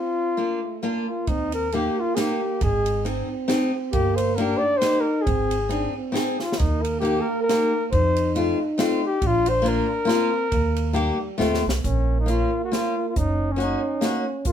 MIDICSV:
0, 0, Header, 1, 6, 480
1, 0, Start_track
1, 0, Key_signature, -3, "major"
1, 0, Tempo, 452830
1, 1363, Time_signature, 3, 2, 24, 8
1, 2314, Tempo, 442152
1, 8554, Tempo, 435730
1, 15815, End_track
2, 0, Start_track
2, 0, Title_t, "Flugelhorn"
2, 0, Program_c, 0, 56
2, 0, Note_on_c, 0, 65, 82
2, 850, Note_off_c, 0, 65, 0
2, 1158, Note_on_c, 0, 65, 68
2, 1360, Note_on_c, 0, 63, 91
2, 1376, Note_off_c, 0, 65, 0
2, 1623, Note_off_c, 0, 63, 0
2, 1637, Note_on_c, 0, 70, 83
2, 1846, Note_on_c, 0, 67, 77
2, 1862, Note_off_c, 0, 70, 0
2, 2122, Note_on_c, 0, 65, 90
2, 2138, Note_off_c, 0, 67, 0
2, 2278, Note_on_c, 0, 68, 63
2, 2294, Note_off_c, 0, 65, 0
2, 2333, Note_on_c, 0, 67, 88
2, 2349, Note_off_c, 0, 68, 0
2, 2793, Note_off_c, 0, 67, 0
2, 2800, Note_on_c, 0, 68, 81
2, 3244, Note_off_c, 0, 68, 0
2, 4209, Note_on_c, 0, 67, 97
2, 4461, Note_on_c, 0, 72, 82
2, 4477, Note_off_c, 0, 67, 0
2, 4671, Note_on_c, 0, 70, 87
2, 4688, Note_off_c, 0, 72, 0
2, 4912, Note_on_c, 0, 74, 103
2, 4928, Note_off_c, 0, 70, 0
2, 5132, Note_on_c, 0, 72, 105
2, 5148, Note_off_c, 0, 74, 0
2, 5383, Note_on_c, 0, 70, 90
2, 5399, Note_off_c, 0, 72, 0
2, 5609, Note_on_c, 0, 68, 85
2, 5625, Note_off_c, 0, 70, 0
2, 6382, Note_off_c, 0, 68, 0
2, 6901, Note_on_c, 0, 65, 71
2, 7091, Note_on_c, 0, 63, 73
2, 7107, Note_off_c, 0, 65, 0
2, 7353, Note_on_c, 0, 70, 81
2, 7370, Note_off_c, 0, 63, 0
2, 7535, Note_off_c, 0, 70, 0
2, 7541, Note_on_c, 0, 67, 76
2, 7773, Note_on_c, 0, 70, 83
2, 7789, Note_off_c, 0, 67, 0
2, 8002, Note_off_c, 0, 70, 0
2, 8008, Note_on_c, 0, 70, 100
2, 8486, Note_off_c, 0, 70, 0
2, 8542, Note_on_c, 0, 72, 95
2, 8997, Note_off_c, 0, 72, 0
2, 9797, Note_on_c, 0, 67, 92
2, 10027, Note_on_c, 0, 65, 101
2, 10043, Note_off_c, 0, 67, 0
2, 10272, Note_on_c, 0, 72, 90
2, 10288, Note_off_c, 0, 65, 0
2, 10484, Note_on_c, 0, 70, 99
2, 10501, Note_off_c, 0, 72, 0
2, 12392, Note_off_c, 0, 70, 0
2, 12876, Note_on_c, 0, 61, 78
2, 13225, Note_off_c, 0, 61, 0
2, 13257, Note_on_c, 0, 63, 72
2, 13372, Note_on_c, 0, 65, 77
2, 13389, Note_off_c, 0, 63, 0
2, 13738, Note_off_c, 0, 65, 0
2, 13745, Note_on_c, 0, 66, 80
2, 13843, Note_on_c, 0, 65, 87
2, 13860, Note_off_c, 0, 66, 0
2, 14218, Note_off_c, 0, 65, 0
2, 14236, Note_on_c, 0, 65, 70
2, 14330, Note_on_c, 0, 63, 91
2, 14347, Note_off_c, 0, 65, 0
2, 14710, Note_on_c, 0, 61, 75
2, 14727, Note_off_c, 0, 63, 0
2, 14833, Note_on_c, 0, 63, 74
2, 14849, Note_off_c, 0, 61, 0
2, 15553, Note_off_c, 0, 63, 0
2, 15749, Note_on_c, 0, 65, 87
2, 15815, Note_off_c, 0, 65, 0
2, 15815, End_track
3, 0, Start_track
3, 0, Title_t, "Steel-string acoustic guitar"
3, 0, Program_c, 1, 25
3, 394, Note_on_c, 1, 58, 54
3, 399, Note_on_c, 1, 62, 47
3, 405, Note_on_c, 1, 65, 60
3, 630, Note_off_c, 1, 58, 0
3, 632, Note_off_c, 1, 62, 0
3, 635, Note_off_c, 1, 65, 0
3, 876, Note_on_c, 1, 58, 69
3, 882, Note_on_c, 1, 62, 63
3, 888, Note_on_c, 1, 65, 78
3, 1117, Note_off_c, 1, 58, 0
3, 1120, Note_off_c, 1, 62, 0
3, 1123, Note_off_c, 1, 65, 0
3, 1838, Note_on_c, 1, 58, 60
3, 1849, Note_on_c, 1, 63, 56
3, 1855, Note_on_c, 1, 67, 57
3, 2072, Note_off_c, 1, 58, 0
3, 2078, Note_off_c, 1, 63, 0
3, 2078, Note_off_c, 1, 67, 0
3, 2293, Note_on_c, 1, 58, 64
3, 2303, Note_on_c, 1, 63, 61
3, 2310, Note_on_c, 1, 67, 69
3, 2540, Note_off_c, 1, 58, 0
3, 2547, Note_off_c, 1, 63, 0
3, 2547, Note_off_c, 1, 67, 0
3, 3252, Note_on_c, 1, 60, 56
3, 3258, Note_on_c, 1, 63, 49
3, 3266, Note_on_c, 1, 68, 61
3, 3500, Note_off_c, 1, 60, 0
3, 3501, Note_off_c, 1, 63, 0
3, 3506, Note_off_c, 1, 68, 0
3, 3720, Note_on_c, 1, 60, 77
3, 3725, Note_on_c, 1, 63, 71
3, 3734, Note_on_c, 1, 68, 85
3, 3972, Note_off_c, 1, 60, 0
3, 3975, Note_off_c, 1, 63, 0
3, 3977, Note_off_c, 1, 68, 0
3, 4700, Note_on_c, 1, 58, 67
3, 4714, Note_on_c, 1, 63, 60
3, 4724, Note_on_c, 1, 67, 68
3, 4941, Note_off_c, 1, 58, 0
3, 4949, Note_off_c, 1, 63, 0
3, 4951, Note_off_c, 1, 67, 0
3, 5170, Note_on_c, 1, 58, 73
3, 5171, Note_on_c, 1, 63, 56
3, 5177, Note_on_c, 1, 67, 71
3, 5414, Note_off_c, 1, 63, 0
3, 5416, Note_off_c, 1, 58, 0
3, 5420, Note_off_c, 1, 67, 0
3, 6121, Note_on_c, 1, 60, 53
3, 6131, Note_on_c, 1, 63, 42
3, 6137, Note_on_c, 1, 68, 60
3, 6373, Note_off_c, 1, 60, 0
3, 6375, Note_off_c, 1, 63, 0
3, 6380, Note_off_c, 1, 68, 0
3, 6588, Note_on_c, 1, 60, 68
3, 6607, Note_on_c, 1, 63, 68
3, 6611, Note_on_c, 1, 68, 74
3, 6848, Note_off_c, 1, 60, 0
3, 6857, Note_off_c, 1, 68, 0
3, 6858, Note_off_c, 1, 63, 0
3, 7559, Note_on_c, 1, 58, 63
3, 7566, Note_on_c, 1, 63, 54
3, 7575, Note_on_c, 1, 67, 69
3, 7813, Note_off_c, 1, 58, 0
3, 7817, Note_off_c, 1, 63, 0
3, 7822, Note_off_c, 1, 67, 0
3, 8082, Note_on_c, 1, 58, 58
3, 8086, Note_on_c, 1, 63, 54
3, 8089, Note_on_c, 1, 67, 69
3, 8315, Note_off_c, 1, 63, 0
3, 8316, Note_off_c, 1, 58, 0
3, 8319, Note_off_c, 1, 67, 0
3, 9018, Note_on_c, 1, 57, 52
3, 9021, Note_on_c, 1, 60, 46
3, 9029, Note_on_c, 1, 65, 72
3, 9261, Note_off_c, 1, 60, 0
3, 9262, Note_off_c, 1, 57, 0
3, 9268, Note_off_c, 1, 65, 0
3, 9486, Note_on_c, 1, 57, 76
3, 9498, Note_on_c, 1, 60, 84
3, 9503, Note_on_c, 1, 65, 73
3, 9731, Note_off_c, 1, 57, 0
3, 9737, Note_off_c, 1, 60, 0
3, 9737, Note_off_c, 1, 65, 0
3, 10414, Note_on_c, 1, 58, 70
3, 10436, Note_on_c, 1, 62, 66
3, 10439, Note_on_c, 1, 65, 64
3, 10671, Note_off_c, 1, 58, 0
3, 10682, Note_off_c, 1, 65, 0
3, 10684, Note_off_c, 1, 62, 0
3, 10889, Note_on_c, 1, 58, 73
3, 10902, Note_on_c, 1, 62, 53
3, 10913, Note_on_c, 1, 65, 80
3, 11148, Note_off_c, 1, 58, 0
3, 11150, Note_off_c, 1, 62, 0
3, 11159, Note_off_c, 1, 65, 0
3, 11862, Note_on_c, 1, 58, 76
3, 11870, Note_on_c, 1, 63, 55
3, 11873, Note_on_c, 1, 67, 87
3, 12115, Note_off_c, 1, 58, 0
3, 12117, Note_off_c, 1, 63, 0
3, 12121, Note_off_c, 1, 67, 0
3, 12350, Note_on_c, 1, 57, 79
3, 12362, Note_on_c, 1, 60, 71
3, 12373, Note_on_c, 1, 65, 87
3, 12607, Note_off_c, 1, 57, 0
3, 12612, Note_off_c, 1, 60, 0
3, 12618, Note_off_c, 1, 65, 0
3, 13322, Note_on_c, 1, 58, 54
3, 13335, Note_on_c, 1, 61, 55
3, 13345, Note_on_c, 1, 65, 68
3, 13580, Note_off_c, 1, 58, 0
3, 13587, Note_off_c, 1, 61, 0
3, 13592, Note_off_c, 1, 65, 0
3, 13825, Note_on_c, 1, 58, 61
3, 13830, Note_on_c, 1, 61, 42
3, 13841, Note_on_c, 1, 65, 62
3, 14073, Note_off_c, 1, 61, 0
3, 14074, Note_off_c, 1, 58, 0
3, 14081, Note_off_c, 1, 65, 0
3, 14758, Note_on_c, 1, 58, 60
3, 14772, Note_on_c, 1, 61, 53
3, 14777, Note_on_c, 1, 66, 61
3, 15016, Note_off_c, 1, 58, 0
3, 15023, Note_off_c, 1, 61, 0
3, 15025, Note_off_c, 1, 66, 0
3, 15251, Note_on_c, 1, 58, 66
3, 15266, Note_on_c, 1, 61, 58
3, 15281, Note_on_c, 1, 66, 73
3, 15499, Note_off_c, 1, 58, 0
3, 15507, Note_off_c, 1, 61, 0
3, 15514, Note_off_c, 1, 66, 0
3, 15815, End_track
4, 0, Start_track
4, 0, Title_t, "Euphonium"
4, 0, Program_c, 2, 58
4, 0, Note_on_c, 2, 60, 76
4, 402, Note_on_c, 2, 58, 67
4, 418, Note_off_c, 2, 60, 0
4, 663, Note_on_c, 2, 57, 62
4, 679, Note_off_c, 2, 58, 0
4, 875, Note_on_c, 2, 58, 61
4, 891, Note_off_c, 2, 57, 0
4, 1354, Note_off_c, 2, 58, 0
4, 1360, Note_on_c, 2, 60, 79
4, 1805, Note_off_c, 2, 60, 0
4, 1823, Note_on_c, 2, 58, 81
4, 2811, Note_on_c, 2, 56, 78
4, 2827, Note_off_c, 2, 58, 0
4, 3278, Note_on_c, 2, 60, 90
4, 3294, Note_off_c, 2, 56, 0
4, 4208, Note_on_c, 2, 58, 101
4, 4224, Note_off_c, 2, 60, 0
4, 4694, Note_on_c, 2, 62, 98
4, 4710, Note_off_c, 2, 58, 0
4, 5181, Note_on_c, 2, 63, 106
4, 5197, Note_off_c, 2, 62, 0
4, 5650, Note_on_c, 2, 60, 93
4, 5666, Note_off_c, 2, 63, 0
4, 5992, Note_off_c, 2, 60, 0
4, 6136, Note_on_c, 2, 62, 94
4, 6386, Note_off_c, 2, 62, 0
4, 6421, Note_on_c, 2, 60, 80
4, 6867, Note_off_c, 2, 60, 0
4, 7110, Note_on_c, 2, 58, 91
4, 8510, Note_off_c, 2, 58, 0
4, 8549, Note_on_c, 2, 63, 90
4, 9937, Note_off_c, 2, 63, 0
4, 9968, Note_on_c, 2, 62, 89
4, 10930, Note_on_c, 2, 60, 84
4, 10946, Note_off_c, 2, 62, 0
4, 11385, Note_off_c, 2, 60, 0
4, 11391, Note_on_c, 2, 58, 83
4, 11909, Note_on_c, 2, 55, 77
4, 11925, Note_off_c, 2, 58, 0
4, 12361, Note_off_c, 2, 55, 0
4, 12367, Note_on_c, 2, 57, 74
4, 12830, Note_off_c, 2, 57, 0
4, 12857, Note_on_c, 2, 58, 81
4, 14322, Note_on_c, 2, 61, 94
4, 14338, Note_off_c, 2, 58, 0
4, 15757, Note_on_c, 2, 58, 90
4, 15773, Note_off_c, 2, 61, 0
4, 15815, Note_off_c, 2, 58, 0
4, 15815, End_track
5, 0, Start_track
5, 0, Title_t, "Upright bass"
5, 0, Program_c, 3, 32
5, 1355, Note_on_c, 3, 39, 77
5, 1975, Note_off_c, 3, 39, 0
5, 2788, Note_on_c, 3, 32, 99
5, 3414, Note_off_c, 3, 32, 0
5, 4211, Note_on_c, 3, 31, 87
5, 4842, Note_off_c, 3, 31, 0
5, 5664, Note_on_c, 3, 32, 85
5, 6292, Note_off_c, 3, 32, 0
5, 7120, Note_on_c, 3, 39, 89
5, 7743, Note_off_c, 3, 39, 0
5, 8549, Note_on_c, 3, 41, 91
5, 9173, Note_off_c, 3, 41, 0
5, 9977, Note_on_c, 3, 34, 95
5, 10599, Note_off_c, 3, 34, 0
5, 11401, Note_on_c, 3, 39, 95
5, 12033, Note_off_c, 3, 39, 0
5, 12377, Note_on_c, 3, 39, 79
5, 12620, Note_off_c, 3, 39, 0
5, 12655, Note_on_c, 3, 36, 68
5, 12853, Note_off_c, 3, 36, 0
5, 12871, Note_on_c, 3, 34, 85
5, 13505, Note_off_c, 3, 34, 0
5, 14321, Note_on_c, 3, 30, 76
5, 14943, Note_off_c, 3, 30, 0
5, 15739, Note_on_c, 3, 32, 81
5, 15815, Note_off_c, 3, 32, 0
5, 15815, End_track
6, 0, Start_track
6, 0, Title_t, "Drums"
6, 1349, Note_on_c, 9, 51, 35
6, 1352, Note_on_c, 9, 36, 67
6, 1455, Note_off_c, 9, 51, 0
6, 1458, Note_off_c, 9, 36, 0
6, 1613, Note_on_c, 9, 51, 40
6, 1719, Note_off_c, 9, 51, 0
6, 1828, Note_on_c, 9, 51, 35
6, 1934, Note_off_c, 9, 51, 0
6, 2295, Note_on_c, 9, 38, 57
6, 2295, Note_on_c, 9, 51, 43
6, 2403, Note_off_c, 9, 38, 0
6, 2403, Note_off_c, 9, 51, 0
6, 2778, Note_on_c, 9, 51, 39
6, 2782, Note_on_c, 9, 36, 69
6, 2886, Note_off_c, 9, 51, 0
6, 2891, Note_off_c, 9, 36, 0
6, 3048, Note_on_c, 9, 51, 46
6, 3156, Note_off_c, 9, 51, 0
6, 3264, Note_on_c, 9, 51, 38
6, 3372, Note_off_c, 9, 51, 0
6, 3738, Note_on_c, 9, 38, 56
6, 3738, Note_on_c, 9, 51, 44
6, 3847, Note_off_c, 9, 38, 0
6, 3847, Note_off_c, 9, 51, 0
6, 4210, Note_on_c, 9, 51, 42
6, 4215, Note_on_c, 9, 36, 73
6, 4318, Note_off_c, 9, 51, 0
6, 4324, Note_off_c, 9, 36, 0
6, 4479, Note_on_c, 9, 51, 46
6, 4588, Note_off_c, 9, 51, 0
6, 4697, Note_on_c, 9, 51, 38
6, 4806, Note_off_c, 9, 51, 0
6, 5172, Note_on_c, 9, 38, 60
6, 5172, Note_on_c, 9, 51, 40
6, 5281, Note_off_c, 9, 38, 0
6, 5281, Note_off_c, 9, 51, 0
6, 5662, Note_on_c, 9, 36, 72
6, 5663, Note_on_c, 9, 51, 42
6, 5770, Note_off_c, 9, 36, 0
6, 5771, Note_off_c, 9, 51, 0
6, 5926, Note_on_c, 9, 51, 44
6, 6034, Note_off_c, 9, 51, 0
6, 6137, Note_on_c, 9, 51, 39
6, 6246, Note_off_c, 9, 51, 0
6, 6625, Note_on_c, 9, 38, 58
6, 6625, Note_on_c, 9, 51, 43
6, 6733, Note_off_c, 9, 38, 0
6, 6733, Note_off_c, 9, 51, 0
6, 6888, Note_on_c, 9, 38, 41
6, 6996, Note_off_c, 9, 38, 0
6, 7026, Note_on_c, 9, 38, 61
6, 7103, Note_on_c, 9, 51, 38
6, 7110, Note_on_c, 9, 36, 73
6, 7135, Note_off_c, 9, 38, 0
6, 7212, Note_off_c, 9, 51, 0
6, 7219, Note_off_c, 9, 36, 0
6, 7376, Note_on_c, 9, 51, 43
6, 7485, Note_off_c, 9, 51, 0
6, 7595, Note_on_c, 9, 51, 35
6, 7703, Note_off_c, 9, 51, 0
6, 8079, Note_on_c, 9, 38, 59
6, 8079, Note_on_c, 9, 51, 41
6, 8187, Note_off_c, 9, 38, 0
6, 8187, Note_off_c, 9, 51, 0
6, 8548, Note_on_c, 9, 36, 69
6, 8548, Note_on_c, 9, 51, 39
6, 8658, Note_off_c, 9, 36, 0
6, 8658, Note_off_c, 9, 51, 0
6, 8812, Note_on_c, 9, 51, 41
6, 8922, Note_off_c, 9, 51, 0
6, 9023, Note_on_c, 9, 51, 37
6, 9133, Note_off_c, 9, 51, 0
6, 9498, Note_on_c, 9, 38, 65
6, 9498, Note_on_c, 9, 51, 42
6, 9608, Note_off_c, 9, 38, 0
6, 9608, Note_off_c, 9, 51, 0
6, 9971, Note_on_c, 9, 36, 67
6, 9971, Note_on_c, 9, 51, 44
6, 10081, Note_off_c, 9, 36, 0
6, 10081, Note_off_c, 9, 51, 0
6, 10239, Note_on_c, 9, 51, 49
6, 10349, Note_off_c, 9, 51, 0
6, 10456, Note_on_c, 9, 51, 42
6, 10567, Note_off_c, 9, 51, 0
6, 10934, Note_on_c, 9, 38, 53
6, 10934, Note_on_c, 9, 51, 42
6, 11045, Note_off_c, 9, 38, 0
6, 11045, Note_off_c, 9, 51, 0
6, 11404, Note_on_c, 9, 36, 77
6, 11404, Note_on_c, 9, 51, 45
6, 11514, Note_off_c, 9, 36, 0
6, 11514, Note_off_c, 9, 51, 0
6, 11676, Note_on_c, 9, 51, 40
6, 11786, Note_off_c, 9, 51, 0
6, 11891, Note_on_c, 9, 51, 32
6, 12001, Note_off_c, 9, 51, 0
6, 12376, Note_on_c, 9, 38, 42
6, 12486, Note_off_c, 9, 38, 0
6, 12532, Note_on_c, 9, 38, 48
6, 12642, Note_off_c, 9, 38, 0
6, 12696, Note_on_c, 9, 38, 76
6, 12806, Note_off_c, 9, 38, 0
6, 12864, Note_on_c, 9, 36, 60
6, 12865, Note_on_c, 9, 42, 38
6, 12975, Note_off_c, 9, 36, 0
6, 12975, Note_off_c, 9, 42, 0
6, 13345, Note_on_c, 9, 42, 38
6, 13456, Note_off_c, 9, 42, 0
6, 13841, Note_on_c, 9, 38, 57
6, 13841, Note_on_c, 9, 42, 41
6, 13951, Note_off_c, 9, 38, 0
6, 13951, Note_off_c, 9, 42, 0
6, 14316, Note_on_c, 9, 42, 40
6, 14319, Note_on_c, 9, 36, 73
6, 14426, Note_off_c, 9, 42, 0
6, 14429, Note_off_c, 9, 36, 0
6, 14800, Note_on_c, 9, 42, 31
6, 14910, Note_off_c, 9, 42, 0
6, 15262, Note_on_c, 9, 38, 58
6, 15262, Note_on_c, 9, 42, 39
6, 15373, Note_off_c, 9, 38, 0
6, 15373, Note_off_c, 9, 42, 0
6, 15734, Note_on_c, 9, 42, 41
6, 15740, Note_on_c, 9, 36, 61
6, 15815, Note_off_c, 9, 36, 0
6, 15815, Note_off_c, 9, 42, 0
6, 15815, End_track
0, 0, End_of_file